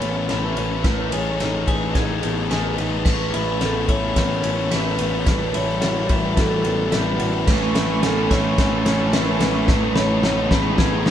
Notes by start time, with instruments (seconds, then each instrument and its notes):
Already playing: clean electric guitar C#4 E4, ambient pad A4 C#5 E5 B5
0.00 picked electric bass A1, distorted electric guitar A3 C#4, clean electric guitar B3, vibraphone C#5, ride
0.07 distorted electric guitar A3 C#4
0.15 distorted electric guitar A3 C#4
0.23 distorted electric guitar A3 C#4
0.29 picked electric bass A1, distorted electric guitar A3 C#4, clean electric guitar E4, vibraphone B4, snare, ride
0.38 distorted electric guitar A3 C#4
0.45 distorted electric guitar A3 C#4
0.53 picked electric bass A1, distorted electric guitar A3 C#4, ride
0.58 distorted electric guitar A3, clean electric guitar C#4
0.62 distorted electric guitar C#4
0.68 distorted electric guitar A3 C#4
0.76 distorted electric guitar A3 C#4
0.84 picked electric bass A1, clean electric guitar A2, distorted electric guitar A3 D#4, ambient pad G#4 B4 D#5 B5, vibraphone B4, kick, snare, ride
0.92 distorted electric guitar A3 D#4
0.99 distorted electric guitar A3 D#4
1.07 distorted electric guitar A3 D#4
1.12 picked electric bass A1, distorted electric guitar A3 D#4, clean electric guitar G#4, vibraphone C#5, ride
1.21 distorted electric guitar A3 D#4
1.29 distorted electric guitar A3 D#4
1.37 picked electric bass A1, distorted electric guitar A3 D#4, clean electric guitar D#4, snare, ride
1.44 distorted electric guitar A3 D#4
1.52 distorted electric guitar A3 D#4
1.60 distorted electric guitar A3 D#4
1.66 picked electric bass A1, distorted electric guitar A3 D#4, clean electric guitar G#4, vibraphone B4, kick, ride
1.75 distorted electric guitar A3 D#4
1.83 distorted electric guitar A3 D#4
1.91 distorted electric guitar A3 D#4
1.95 picked electric bass A1, clean electric guitar D#4, vibraphone G#4, kick, snare, ride
1.99 distorted electric guitar A3 D#4
2.05 distorted electric guitar A3 D#4
2.13 distorted electric guitar A3 D#4
2.21 picked electric bass A1, distorted electric guitar A3 D#4, clean electric guitar B3, ride
2.28 distorted electric guitar A3 D#4
2.37 distorted electric guitar A3 D#4
2.45 distorted electric guitar A3 D#4
2.50 picked electric bass A1, distorted electric guitar A3 D#4, clean electric guitar G#4, vibraphone B4, snare, ride
2.59 distorted electric guitar A3 D#4
2.68 distorted electric guitar A3 D#4
2.74 distorted electric guitar A3 D#4, vibraphone B4
2.78 picked electric bass A1, distorted electric guitar A3, clean electric guitar D#4, ride
2.83 distorted electric guitar D#4
2.90 distorted electric guitar A3 D#4
2.97 distorted electric guitar A3 D#4
3.05 picked electric bass A1, clean electric guitar A2, distorted electric guitar A3 C#4, ambient pad A4 C#5 E5, vibraphone B4, kick, snare, crash
3.13 distorted electric guitar A3 C#4
3.21 distorted electric guitar A3 C#4
3.29 distorted electric guitar A3 C#4
3.34 picked electric bass A1, distorted electric guitar A3 C#4, clean electric guitar E4, ride
3.43 distorted electric guitar A3 C#4
3.52 distorted electric guitar A3 C#4
3.59 picked electric bass A1, distorted electric guitar A3 C#4, clean electric guitar B3, vibraphone A4, snare, ride
3.67 distorted electric guitar A3 C#4
3.74 distorted electric guitar A3 C#4
3.82 distorted electric guitar A3 C#4
3.88 picked electric bass A1, distorted electric guitar A3 C#4, clean electric guitar E4, vibraphone C#5, kick, ride
3.97 distorted electric guitar A3 C#4
4.05 distorted electric guitar A3 C#4
4.13 picked electric bass A1, distorted electric guitar A3 C#4, kick, snare, ride
4.17 distorted electric guitar A3, clean electric guitar B3
4.22 distorted electric guitar C#4
4.28 distorted electric guitar A3 C#4
4.35 distorted electric guitar A3 C#4
4.43 picked electric bass A1, distorted electric guitar A3 C#4, clean electric guitar C#4, vibraphone C#5, ride
4.51 distorted electric guitar A3 C#4
4.58 distorted electric guitar A3 C#4
4.66 distorted electric guitar A3 C#4
4.71 picked electric bass A1, distorted electric guitar A3 C#4, clean electric guitar E4, vibraphone B4, snare, ride
4.82 distorted electric guitar A3 C#4
4.89 distorted electric guitar A3 C#4
4.97 picked electric bass A1, distorted electric guitar A3 C#4, clean electric guitar B3, ride
5.04 distorted electric guitar A3 C#4
5.12 distorted electric guitar A3 C#4
5.20 distorted electric guitar A3 C#4
5.26 picked electric bass A1, clean electric guitar A2, distorted electric guitar E3 G3, ambient pad G3 F#5, vibraphone B4, kick, snare, ride
5.34 distorted electric guitar E3 G3
5.43 distorted electric guitar E3 G3
5.49 distorted electric guitar E3 G3
5.54 picked electric bass A1, distorted electric guitar G3, clean electric guitar E4, vibraphone C#5, ride
5.58 distorted electric guitar E3
5.65 distorted electric guitar E3 G3
5.72 distorted electric guitar E3 G3
5.80 picked electric bass A1, distorted electric guitar E3 G3, clean electric guitar F#4, snare, ride
5.87 distorted electric guitar E3 G3
5.95 distorted electric guitar E3 G3
6.03 distorted electric guitar E3 G3
6.09 picked electric bass A1, distorted electric guitar E3 G3, clean electric guitar E4, vibraphone B4, kick, ride
6.19 distorted electric guitar E3 G3
6.25 distorted electric guitar E3 G3
6.33 distorted electric guitar E3 G3, vibraphone A4, kick, snare, ride
6.37 picked electric bass A1, clean electric guitar F#4
6.41 distorted electric guitar E3 G3
6.48 distorted electric guitar E3 G3
6.56 distorted electric guitar E3 G3
6.64 picked electric bass A1, distorted electric guitar E3 G3, clean electric guitar B3, ride
6.71 distorted electric guitar E3 G3
6.79 distorted electric guitar E3 G3
6.87 distorted electric guitar E3 G3
6.92 picked electric bass A1, distorted electric guitar E3 G3, clean electric guitar E4, vibraphone B4, snare, ride
7.02 distorted electric guitar E3 G3
7.10 distorted electric guitar E3 G3
7.17 picked electric bass A1, distorted electric guitar E3 G3, clean electric guitar F#4, vibraphone B4, ride
7.24 distorted electric guitar E3 G3
7.33 distorted electric guitar E3 G3
7.40 distorted electric guitar E3 G3
7.47 picked electric bass A1, clean electric guitar A2, distorted electric guitar A3 C#4, ambient pad A4 C#5, vibraphone B4, kick, snare, crash
7.56 distorted electric guitar A3 C#4
7.62 distorted electric guitar A3 C#4
7.70 distorted electric guitar A3 C#4
7.75 picked electric bass A1, distorted electric guitar A3 C#4, clean electric guitar E4, snare, ride
7.86 distorted electric guitar A3 C#4
7.93 distorted electric guitar A3 C#4
8.00 picked electric bass A1, distorted electric guitar A3 C#4, clean electric guitar B3, vibraphone A4, snare, ride
8.08 distorted electric guitar A3 C#4
8.16 distorted electric guitar A3 C#4
8.23 distorted electric guitar A3 C#4
8.30 picked electric bass A1, distorted electric guitar A3 C#4, clean electric guitar E4, vibraphone C#5, kick, snare, ride
8.38 distorted electric guitar A3 C#4
8.45 distorted electric guitar A3 C#4
8.54 distorted electric guitar A3 C#4
8.58 picked electric bass A1, distorted electric guitar A3 C#4, clean electric guitar B3, kick, snare, ride
8.68 distorted electric guitar A3 C#4
8.76 distorted electric guitar A3 C#4
8.84 picked electric bass A1, distorted electric guitar A3 C#4, clean electric guitar C#4, vibraphone C#5, snare, ride
8.91 distorted electric guitar A3 C#4
8.98 distorted electric guitar A3 C#4
9.06 distorted electric guitar A3 C#4
9.13 picked electric bass A1, distorted electric guitar A3 C#4, clean electric guitar E4, vibraphone B4, snare, ride
9.22 distorted electric guitar A3 C#4
9.29 distorted electric guitar A3 C#4
9.37 distorted electric guitar A3 C#4, clean electric guitar B3, snare, ride
9.41 picked electric bass A1, distorted electric guitar A3
9.46 distorted electric guitar C#4
9.52 distorted electric guitar A3 C#4
9.60 distorted electric guitar A3 C#4
9.68 picked electric bass A1, clean electric guitar A2, distorted electric guitar A3 D#4, ambient pad G#4 B4 D#5, vibraphone B4, kick, snare
9.75 distorted electric guitar A3 D#4
9.84 distorted electric guitar A3 D#4
9.92 distorted electric guitar A3 D#4, clean electric guitar B4, snare
9.96 picked electric bass A1, distorted electric guitar A3 D#4, vibraphone C#5
10.07 distorted electric guitar A3 D#4
10.15 distorted electric guitar A3 D#4
10.23 picked electric bass A1, distorted electric guitar A3 D#4, clean electric guitar B3, snare
10.29 distorted electric guitar A3 D#4
10.37 distorted electric guitar A3 D#4
10.44 distorted electric guitar A3 D#4
10.51 picked electric bass A1, distorted electric guitar A3 D#4, clean electric guitar B4, vibraphone B4, kick, snare
10.61 distorted electric guitar A3 D#4
10.68 distorted electric guitar A3 D#4
10.76 picked electric bass A1, distorted electric guitar A3 D#4, clean electric guitar B3, vibraphone G#4, kick, snare
10.83 distorted electric guitar A3 D#4
10.90 distorted electric guitar D#4
10.95 distorted electric guitar A3
10.99 distorted electric guitar A3 D#4
11.06 picked electric bass A1, distorted electric guitar D#4, clean electric guitar D#4, snare